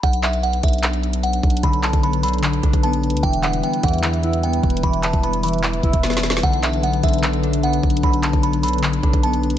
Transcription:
0.03 B1 F#3 B3 D4 B4 F#5, kick, closed hi-hat
0.13 closed hi-hat
0.23 E5, clap, closed hi-hat
0.33 closed hi-hat
0.43 F#5, closed hi-hat
0.53 closed hi-hat
0.63 B1 E5, kick, closed hi-hat
0.68 closed hi-hat
0.73 closed hi-hat
0.78 closed hi-hat
0.83 clap, closed hi-hat
0.93 closed hi-hat
1.03 closed hi-hat
1.13 closed hi-hat
1.23 F#5, closed hi-hat
1.33 closed hi-hat
1.43 B1, kick, closed hi-hat
1.50 closed hi-hat
1.57 closed hi-hat
1.63 B1 D3 B5, kick, closed hi-hat
1.73 closed hi-hat
1.83 A5, clap, closed hi-hat
1.93 B1, kick, closed hi-hat
2.03 B3 B5, closed hi-hat
2.13 closed hi-hat
2.23 D3 B5, closed hi-hat, open hi-hat
2.28 closed hi-hat
2.33 closed hi-hat
2.38 closed hi-hat
2.43 D3, clap, closed hi-hat
2.53 closed hi-hat
2.63 B1 D4, kick, closed hi-hat
2.73 B1, kick, closed hi-hat
2.83 B3 A5, closed hi-hat
2.93 closed hi-hat
3.03 closed hi-hat
3.10 D2, closed hi-hat
3.17 closed hi-hat
3.23 E1 E3 G3 E4 G5, kick, closed hi-hat
3.33 closed hi-hat
3.43 F#5, clap, closed hi-hat
3.53 closed hi-hat
3.63 B3 G5, closed hi-hat
3.73 closed hi-hat
3.83 E2 E3 F#5, kick, closed hi-hat
3.88 closed hi-hat
3.93 closed hi-hat
3.98 closed hi-hat
4.03 E3, clap, closed hi-hat
4.13 closed hi-hat
4.23 E4, closed hi-hat
4.33 closed hi-hat
4.43 B3 G5, closed hi-hat
4.53 closed hi-hat
4.63 E1, kick, closed hi-hat
4.70 closed hi-hat
4.77 closed hi-hat
4.83 E1 E3 B5, kick, closed hi-hat
4.93 closed hi-hat
5.03 A5, clap, closed hi-hat
5.13 E1, kick, closed hi-hat
5.23 B3 B5, closed hi-hat
5.33 closed hi-hat
5.43 E3 B5, closed hi-hat, open hi-hat
5.48 closed hi-hat
5.53 closed hi-hat
5.58 closed hi-hat
5.63 E3, clap, closed hi-hat
5.73 closed hi-hat
5.83 E1 E4, kick, closed hi-hat
5.93 E1, kick, closed hi-hat
6.03 B3, snare, closed hi-hat
6.10 snare, closed hi-hat
6.17 snare
6.23 snare, closed hi-hat
6.30 snare
6.37 snare
6.43 B1 D3 F#3 D4 F#5, kick, closed hi-hat
6.53 closed hi-hat
6.63 E5, clap, closed hi-hat
6.73 closed hi-hat
6.83 B3 F#5, closed hi-hat
6.93 closed hi-hat
7.03 B1 D3 E5, kick, closed hi-hat
7.08 closed hi-hat
7.13 closed hi-hat
7.18 closed hi-hat
7.23 D3, clap, closed hi-hat
7.33 closed hi-hat
7.43 D4, closed hi-hat
7.53 closed hi-hat
7.63 B3 F#5, closed hi-hat
7.73 closed hi-hat
7.83 B1, kick, closed hi-hat
7.90 closed hi-hat
7.97 closed hi-hat
8.03 B1 D3 B5, kick, closed hi-hat
8.13 closed hi-hat
8.23 A5, clap, closed hi-hat
8.33 B1, kick, closed hi-hat
8.43 B3 B5, closed hi-hat
8.53 closed hi-hat
8.63 D3 B5, closed hi-hat, open hi-hat
8.68 closed hi-hat
8.73 closed hi-hat
8.78 closed hi-hat
8.83 D3, clap, closed hi-hat
8.93 closed hi-hat
9.03 B1 D4, kick, closed hi-hat
9.13 B1, kick, closed hi-hat
9.23 B3 A5, closed hi-hat
9.33 closed hi-hat
9.43 closed hi-hat
9.50 D2, closed hi-hat

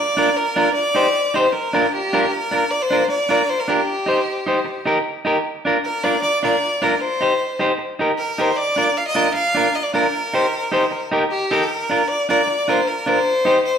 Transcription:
Already playing: D5
0.17 D4 F4 A#4
0.37 A#4
0.56 D4 F4 A#4
0.74 D5
0.95 D#4 G4 C5
1.34 D#4 G4 C5
1.52 A#4, muted clean electric guitar stroke
1.73 D4 F4 A#4
1.93 G4
2.13 D4 F4 A#4
2.31 A#4
2.51 D4 F4 A#4
2.71 D5
2.82 C5
2.91 D4 F4 A#4
3.08 D5, muted clean electric guitar stroke
3.29 D4 F4 A#4
3.50 C5
3.60 A#4
3.68 D4 F4 G4 A#4
4.06 D#4 G4 C5
4.46 D#4 G4 C5
4.64 muted clean electric guitar stroke
4.86 D#4 G4 A#4
5.25 D#4 G4 A#4
5.65 D4 F4 A#4
5.84 A#4
6.04 D4 F4 A#4 D5
6.21 D5, muted clean electric guitar stroke
6.43 D4 F4 A#4 D5
6.82 D4 F4 A#4
7.01 C5
7.21 D#4 G4 C5
7.59 D#4 G4 C5
7.78 muted clean electric guitar stroke
7.99 D#4 G4 A#4
8.18 A#4
8.38 D#4 G4 A#4 C5
8.57 D5
8.76 D4 F4 A#4
8.97 F5
9.07 D#5
9.15 D4 F4 A#4
9.33 F5, muted clean electric guitar stroke
9.55 D4 F4 A#4
9.75 D#5
9.83 D5
9.94 D4 F4 A#4
10.33 D#4 G4 C5
10.72 D#4 G4 C5
10.91 muted clean electric guitar stroke
11.12 D#4 G4 A#4
11.31 G4
11.51 D#4 G4 A4 A#4
11.70 A#4
11.90 D4 F4 A#4
12.08 D5
12.29 D4 F4 A#4 D5
12.46 muted clean electric guitar stroke
12.68 D4 F4 A#4 C5
12.87 A#4
13.06 D4 F4 A#4 C5
13.45 D#4 G4 C5
13.65 C5

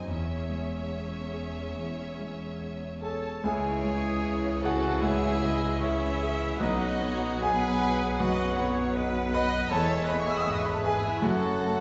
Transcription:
Already playing: F#2 C4 D#4 C5 D#5
0.08 E1 E2 C#4 G#4 C#5 E5
0.50 G#3
0.89 C#5
1.32 G#4
1.75 E2
2.19 G#3
2.58 C#5
3.01 G#4 A4 C#5 A5
3.43 C#2 C#3 E3 C#4 E4 G#4 C#5 E5 G#5
3.84 G#3
4.21 C#5
4.63 F#4 G#4 A4 F#5
5.01 G#2 E4 G#4 C#5 E5
5.41 G#3 D#5
5.79 C#4 E4 C#5 E5
5.83 G#4
6.22 G#4
6.59 B1 B2 F#3 D#4 F#4 B4 D#5 F#5
6.63 D#4 B4 D#5
6.99 B3 C#5
7.40 B3 G#4 B4 D#5 G#5
7.44 G#4
7.82 B4
8.18 F#2 F#4 B4 D#5 F#5
8.56 B3 C#5
8.94 B4 D#5
9.32 B4 D#5 B5
9.69 E1 E2 G#3 G#4 A4 C#5 E5 A5
9.74 A4
10.04 B4 D#5 B5
10.09 B3 B4 B5
10.17 C#5 E5 C#6
10.27 E5 G#5 E6
10.33 D#5 F#5
10.37 E5 D#6
10.42 G#2 B4 E5 G#5 E6
10.46 G#1 D#5 E5 F#5
10.51 C#5 E5 D#6
10.57 C#5 C#6
10.62 B4 D#5 B5
10.66 B5
10.71 A4 C#5 A5
10.75 G#4 A5
10.82 G#4 B4 G#5
10.86 G#4
10.97 E4 G#4
11.03 E4 E5
11.16 C#4 F#4 A4
11.20 F#1 F#2 A3 F#4 A4 C#5 F#5
11.58 A3 A4

